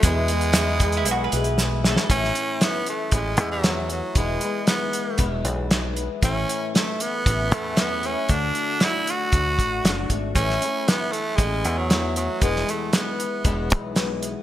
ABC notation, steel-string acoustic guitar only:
X:1
M:4/4
L:1/8
Q:1/4=116
K:A
V:1 name="Steel-string acoustic guitar"
[E,,B,,E,G,B,E] [E,G,B,E] [E,G,B,E]3 [E,G,B,E] [E,G,B,E] [E,G,B,E] | [A,,E,A,CE]2 [E,A,CE]2 [A,,E,CE]2 [E,A,CE]2 | [E,,B,,E,G,B,E] [E,G,B,E] [E,G,B,E]2 [E,,B,,E,G,B,E]2 [E,G,B,E]2 | [A,,E,A,CE]2 [E,A,CE]2 [A,,E,A,CE]2 [E,A,CE] [A,CE] |
[D,A,DF]2 [D,A,DF]2 [D,A,DF]2 [D,A,DF] [A,DF] | [A,,E,A,CE] [A,CE] [E,A,CE]2 [A,,E,CE]2 [E,A,CE]2 | [E,,B,,E,G,B,E]2 [E,G,B,E]2 [E,,B,,E,G,B,E]2 [E,G,B,E]2 |]